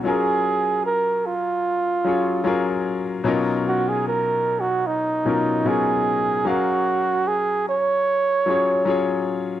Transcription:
0.03 1.37 F#3 medium
0.03 1.38 C#4 medium
0.03 1.38 F4 medium
0.03 1.39 G#4 medium
0.03 0.82 G#4 medium
0.08 1.39 A#4 medium
0.86 1.27 A#4 medium
1.26 2.86 F4 medium
2.04 2.38 F#3 medium
2.04 2.39 C#4 soft
2.04 2.39 F4 soft
2.04 2.40 G#4 medium
2.04 2.40 C#5 medium
2.44 3.12 F#3 medium
2.44 3.12 C#4 medium
2.44 3.13 F4 medium
2.44 3.13 G#4 medium
2.44 3.14 A#4 medium
3.24 4.58 B2 medium
3.24 4.58 F#3 medium
3.24 4.58 C#4 medium
3.24 4.59 D#4 medium
3.24 4.59 F4 medium
3.24 4.60 A#4 medium
3.68 3.90 F#4 medium
3.89 4.06 G#4 medium
4.07 4.61 A#4 medium
4.60 4.88 F#4 medium
4.87 5.69 D#4 medium
5.25 5.59 B2 medium
5.25 5.59 F#3 soft
5.25 5.59 C#4 soft
5.25 5.60 D#4 soft
5.25 5.60 F4 soft
5.25 5.61 A#4 medium
5.65 6.33 B2 medium
5.65 6.33 F#3 medium
5.65 6.33 C#4 medium
5.65 6.34 D#4 medium
5.65 6.34 F4 medium
5.65 6.49 G#4 medium
5.65 6.34 A#4 medium
6.45 7.79 F#3 medium
6.45 7.79 C#4 medium
6.45 7.29 F#4 medium
6.45 7.80 G#4 medium
6.45 7.80 F5 medium
6.49 7.81 A#4 medium
7.28 7.67 G#4 medium
7.69 9.24 C#5 loud
8.46 8.80 F#3 medium
8.46 8.80 C#4 soft
8.46 8.81 F4 medium
8.46 8.81 G#4 soft
8.50 8.82 C#5 medium
8.85 9.53 F#3 medium
8.85 9.53 C#4 medium
8.85 9.54 F4 medium
8.85 9.55 G#4 medium
8.89 9.55 C#5 medium

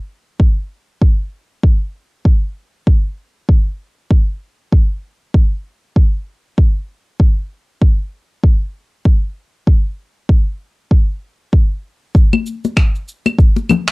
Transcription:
0.40 kick medium
1.02 kick medium
1.63 kick medium
2.25 kick medium
2.87 kick medium
3.49 kick medium
4.11 kick medium
4.72 kick medium
5.34 kick medium
5.96 kick medium
6.58 kick medium
7.20 kick medium
7.82 kick medium
8.44 kick medium
9.05 kick medium
9.67 kick medium
10.29 kick medium
10.91 kick medium
11.53 kick medium
12.15 kick loud
12.15 shaker soft
12.33 high conga medium
12.33 claves medium
12.46 shaker medium
12.65 muted conga soft
12.65 shaker soft
12.77 finger snap medium
12.77 kick loud
12.77 claves medium
12.77 shaker soft
12.95 shaker soft
13.08 shaker medium
13.26 muted conga medium
13.26 claves medium
13.26 shaker soft
13.39 kick loud
13.39 shaker soft
13.56 muted conga soft
13.56 shaker soft
13.69 high conga medium
13.69 low conga medium
13.69 claves medium
13.69 shaker medium
13.88 finger snap medium
13.88 shaker soft

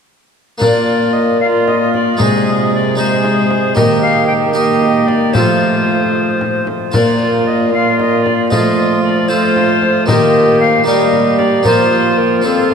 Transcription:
0.58 2.13 A#3 soft
0.58 2.14 D4 soft
0.58 2.14 F4 soft
0.58 1.36 F4 soft
0.58 1.14 D5 medium
0.58 frame drum medium
0.62 2.15 A#2 soft
0.62 1.37 A#3 soft
1.12 1.40 D#5 medium
1.40 2.21 A#3 medium
1.40 1.80 F4 medium
1.40 1.46 F5 medium
1.66 1.92 D#5 medium
1.66 frame drum soft
1.80 2.20 F4 medium
1.93 2.19 D5 medium
1.93 frame drum soft
2.17 3.73 C3 medium
2.17 3.74 C3 medium
2.17 2.94 G#3 soft
2.17 2.97 G#3 medium
2.17 2.95 D#4 soft
2.17 2.97 G#4 medium
2.17 2.95 G#4 soft
2.17 2.71 D#5 medium
2.17 frame drum medium
2.74 2.97 D5 medium
2.96 3.73 G#3 soft
2.96 3.79 G#3 medium
2.96 3.73 D#4 soft
2.96 3.77 G#4 medium
2.96 3.74 G#4 soft
2.96 3.75 C5 medium
3.24 frame drum soft
3.50 frame drum soft
3.75 5.31 D#3 medium
3.75 5.32 D#3 medium
3.75 4.55 A#3 medium
3.75 4.52 D#4 soft
3.75 4.54 G4 medium
3.75 4.52 A#4 soft
3.75 4.01 D#5 medium
3.75 frame drum medium
4.02 4.26 F5 medium
4.26 4.32 G5 medium
4.54 5.33 A#3 medium
4.54 5.32 D#4 soft
4.54 5.39 G4 medium
4.54 5.32 A#4 soft
4.54 5.08 D#5 medium
4.82 frame drum soft
5.07 5.34 D5 medium
5.07 frame drum soft
5.33 6.66 F3 medium
5.33 6.65 F3 soft
5.33 6.66 A3 medium
5.33 6.90 F4 soft
5.33 6.90 A4 soft
5.33 6.67 C5 medium
5.33 frame drum medium
5.37 6.75 F4 medium
6.41 frame drum soft
6.67 frame drum soft
6.92 8.48 A#2 soft
6.92 8.53 A#2 medium
6.92 7.70 A#3 medium
6.92 8.47 F4 soft
6.92 8.47 A#4 soft
6.92 7.48 D5 medium
6.92 frame drum medium
6.96 7.70 F4 soft
7.47 7.72 D#5 medium
7.72 8.54 A#3 medium
7.72 8.50 F4 medium
7.72 7.98 F5 medium
7.98 8.24 D#5 medium
7.98 frame drum soft
8.23 8.48 D5 medium
8.23 frame drum soft
8.49 10.08 F3 medium
8.49 9.31 A3 medium
8.49 9.27 F4 soft
8.49 9.29 F4 medium
8.49 9.28 A4 soft
8.49 9.02 D#5 medium
8.49 frame drum medium
8.53 10.05 F3 soft
9.02 9.30 D5 medium
9.28 10.05 F4 soft
9.28 10.07 F4 medium
9.28 10.06 A4 soft
9.28 10.06 C5 medium
9.32 10.08 A3 medium
9.56 frame drum soft
9.82 frame drum soft
10.06 10.83 D#3 medium
10.06 10.84 D#3 medium
10.06 10.83 A#3 soft
10.06 10.83 A#3 medium
10.06 10.84 G4 soft
10.06 10.83 G4 medium
10.06 10.85 A#4 soft
10.06 10.59 D#5 medium
10.06 frame drum medium
10.60 10.85 F5 medium
10.84 11.65 G3 medium
10.84 11.62 A#3 soft
10.84 11.64 A#3 medium
10.84 11.63 G4 soft
10.84 11.68 G4 medium
10.84 11.64 A#4 soft
10.84 11.40 D#5 medium
10.88 11.63 G3 soft
11.13 frame drum soft
11.38 11.65 D5 medium
11.38 frame drum soft
11.63 12.44 F3 medium
11.63 12.42 A#3 soft
11.63 12.44 A#3 medium
11.63 12.41 F4 soft
11.63 12.45 F4 medium
11.63 12.43 A#4 soft
11.63 12.19 C5 medium
11.63 frame drum medium
11.67 12.42 F3 soft
12.17 12.46 A#4 medium
12.42 12.74 F3 medium
12.42 12.74 F3 soft
12.42 12.74 C4 soft
12.42 12.74 C4 medium
12.42 12.74 F4 soft
12.42 12.74 A4 medium

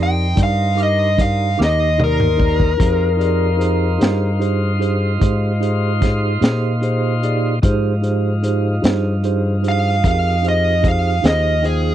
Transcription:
0.00 0.33 F2 medium
0.00 0.26 D#4 medium
0.00 2.74 D#4 medium
0.00 0.26 G4 soft
0.00 0.26 A#4 soft
0.00 2.74 A#4 medium
0.00 2.75 C5 medium
0.00 0.27 D5 medium
0.00 0.39 G5 medium
0.35 1.54 G2 medium
0.35 0.66 D#4 soft
0.35 0.67 G4 soft
0.35 0.67 A#4 soft
0.35 0.67 D5 medium
0.35 kick medium
0.35 closed hi-hat medium
0.43 0.79 F5 medium
0.76 1.07 D#4 medium
0.76 1.07 G4 soft
0.76 1.07 A#4 soft
0.76 1.08 D6 medium
0.76 closed hi-hat medium
0.83 1.19 D#5 medium
1.18 1.48 D#4 soft
1.18 1.48 G4 soft
1.18 1.48 A#4 soft
1.18 1.48 D5 medium
1.18 1.59 F5 medium
1.18 kick medium
1.18 closed hi-hat medium
1.57 2.76 D#2 medium
1.57 1.88 D#4 medium
1.57 1.88 G4 soft
1.57 1.89 A#4 soft
1.57 1.89 D6 medium
1.57 snare medium
1.64 2.00 D#5 medium
1.98 2.28 D#4 soft
1.98 2.29 G4 soft
1.98 2.29 A#4 soft
1.98 2.29 D5 medium
1.98 mid tom medium
2.04 4.39 A#4 medium
2.20 mid tom medium
2.37 2.68 D#4 soft
2.37 2.68 G4 soft
2.37 2.69 A#4 soft
2.37 2.69 D5 medium
2.37 kick medium
2.60 kick medium
2.77 3.97 F2 medium
2.77 3.08 D#4 medium
2.77 7.60 D#4 medium
2.77 7.59 F4 medium
2.77 3.09 G4 medium
2.77 3.09 G#4 medium
2.77 3.09 C5 medium
2.77 7.59 C5 medium
2.77 kick loud
2.77 closed hi-hat medium
3.17 3.48 D#4 medium
3.17 3.49 G4 medium
3.17 3.49 G#4 medium
3.17 3.49 D5 medium
3.21 closed hi-hat medium
3.57 3.89 D#4 medium
3.57 3.89 G4 medium
3.57 3.89 G#4 medium
3.57 3.90 C5 medium
3.57 closed hi-hat medium
3.98 5.18 G2 medium
3.98 4.29 D#4 medium
3.98 4.29 G4 medium
3.98 4.30 G#4 medium
3.98 4.30 C5 medium
3.98 closed hi-hat medium
4.03 snare loud
4.39 4.70 D#4 medium
4.39 4.70 G4 medium
4.39 4.71 G#4 medium
4.39 4.71 C5 medium
4.39 closed hi-hat medium
4.79 5.10 D#4 medium
4.79 5.11 G4 medium
4.79 5.11 G#4 medium
4.79 5.11 C5 medium
4.79 closed hi-hat medium
5.19 6.39 G#2 medium
5.19 5.50 D#4 medium
5.19 5.51 G4 medium
5.19 5.51 G#4 medium
5.19 5.51 C5 medium
5.19 kick medium
5.19 closed hi-hat medium
5.60 5.91 D#4 medium
5.60 5.91 G4 medium
5.60 5.92 G#4 medium
5.60 5.92 C5 medium
5.60 closed hi-hat medium
6.01 6.31 D#4 medium
6.01 6.32 G4 medium
6.01 6.32 G#4 medium
6.01 6.32 C5 medium
6.01 kick medium
6.01 snare soft
6.01 closed hi-hat medium
6.41 7.59 A#2 medium
6.41 6.72 D#4 medium
6.41 6.72 G4 medium
6.41 6.72 G#4 medium
6.41 6.72 C5 medium
6.41 snare loud
6.41 closed hi-hat medium
6.82 7.12 D#4 medium
6.82 7.12 G4 medium
6.82 7.13 G#4 medium
6.82 7.13 C5 medium
6.82 closed hi-hat medium
7.23 7.53 D#4 medium
7.23 7.53 G4 medium
7.23 7.53 G#4 medium
7.23 7.53 D5 medium
7.23 closed hi-hat medium
7.62 8.80 G#2 medium
7.62 11.95 F3 medium
7.62 11.95 D#4 medium
7.62 7.93 D#4 medium
7.62 11.95 F4 medium
7.62 7.93 G4 medium
7.62 7.93 G#4 medium
7.62 7.94 C5 medium
7.62 kick loud
7.62 closed hi-hat medium
8.02 8.33 D#4 medium
8.02 8.33 G4 medium
8.02 8.33 G#4 medium
8.02 8.34 C5 medium
8.02 closed hi-hat medium
8.43 8.73 D#4 medium
8.43 8.73 G4 medium
8.43 8.74 G#4 medium
8.43 8.74 C5 medium
8.43 closed hi-hat medium
8.82 10.01 G2 medium
8.82 9.13 D#4 medium
8.82 9.13 G4 medium
8.82 9.13 G#4 medium
8.82 9.14 C5 medium
8.82 snare loud
8.82 closed hi-hat medium
9.23 9.54 D#4 medium
9.23 9.54 G4 medium
9.23 9.54 G#4 medium
9.23 9.55 C5 medium
9.23 closed hi-hat medium
9.62 9.93 D#4 medium
9.62 9.94 G4 soft
9.62 9.94 G#4 soft
9.62 9.94 C5 medium
9.62 closed hi-hat medium
9.68 10.05 F5 medium
10.04 11.21 F2 medium
10.04 10.34 D#4 medium
10.04 10.34 G4 soft
10.04 10.34 G#4 soft
10.04 10.35 A#4 medium
10.04 kick medium
10.04 closed hi-hat medium
10.08 10.45 F5 medium
10.42 10.73 D#4 medium
10.42 10.74 G4 soft
10.42 10.74 G#4 soft
10.42 10.74 C5 medium
10.42 closed hi-hat medium
10.48 10.85 D#5 medium
10.81 11.13 D#4 soft
10.81 11.14 G4 soft
10.81 11.14 G#4 soft
10.81 11.14 C5 medium
10.81 kick medium
10.81 closed hi-hat medium
10.88 11.25 F5 medium
11.22 11.95 D#2 medium
11.22 11.53 D#4 medium
11.22 11.54 G4 soft
11.22 11.54 G#4 soft
11.22 11.54 C5 medium
11.22 snare loud
11.22 closed hi-hat medium
11.27 11.65 D#5 medium
11.63 11.94 D#4 medium
11.63 11.94 G#4 soft
11.63 11.95 G#4 medium
11.63 11.95 C5 medium
11.63 11.94 G5 soft
11.63 closed hi-hat medium

